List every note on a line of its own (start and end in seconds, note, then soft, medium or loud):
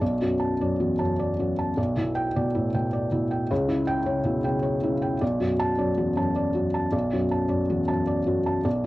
0.00 1.74 B1 medium
0.00 0.33 D5 medium
0.00 0.13 A5 soft
0.21 0.52 F#2 soft
0.21 0.52 F#4 soft
0.40 0.71 A5 soft
0.61 0.92 F#2 soft
0.61 0.92 D5 soft
0.80 0.99 E2 soft
0.80 1.11 F#4 soft
0.99 1.31 F#2 soft
0.99 1.31 A5 soft
1.19 1.51 D5 soft
1.39 1.70 F#2 soft
1.39 1.70 F#4 soft
1.59 1.78 A5 soft
1.77 3.46 B1 medium
1.77 2.09 D5 medium
1.96 2.27 B2 soft
1.96 2.28 E4 soft
2.15 2.46 G5 medium
2.36 2.67 B2 soft
2.36 2.67 D5 medium
2.54 2.74 A2 soft
2.54 2.86 E4 soft
2.74 3.05 B2 soft
2.74 3.05 G5 medium
2.93 3.24 D5 soft
3.12 3.43 B2 soft
3.12 3.42 E4 soft
3.31 3.50 G5 soft
3.51 5.18 C#2 medium
3.51 3.80 C#5 medium
3.68 3.99 C#3 soft
3.68 3.99 E4 medium
3.87 4.18 G5 medium
4.06 4.37 C#3 soft
4.06 4.37 C#5 medium
4.24 4.44 B2 soft
4.24 4.56 E4 soft
4.44 4.75 C#3 soft
4.44 4.75 G5 medium
4.63 4.94 C#5 medium
4.83 5.14 C#3 soft
4.83 5.14 E4 soft
5.02 5.21 G5 medium
5.21 6.89 B1 medium
5.21 5.52 D5 medium
5.40 5.71 F#2 soft
5.40 5.71 F#4 medium
5.60 5.91 A5 medium
5.79 6.10 F#2 soft
5.79 6.10 D5 medium
5.97 6.17 E2 soft
5.97 6.29 F#4 soft
6.17 6.48 F#2 soft
6.17 6.48 A5 medium
6.36 6.66 D5 medium
6.55 6.85 F#2 soft
6.55 6.85 F#4 soft
6.74 7.04 A5 medium
6.92 8.61 B1 medium
6.92 7.23 D5 medium
7.13 7.43 F#2 soft
7.13 7.42 F#4 medium
7.32 7.62 A5 medium
7.49 7.80 F#2 soft
7.49 7.80 D5 medium
7.70 7.89 E2 soft
7.70 8.00 F#4 soft
7.88 8.19 F#2 soft
7.88 8.19 A5 medium
8.07 8.38 D5 soft
8.26 8.57 F#2 soft
8.26 8.58 F#4 soft
8.46 8.65 A5 soft
8.65 8.86 B1 medium
8.65 8.86 D5 medium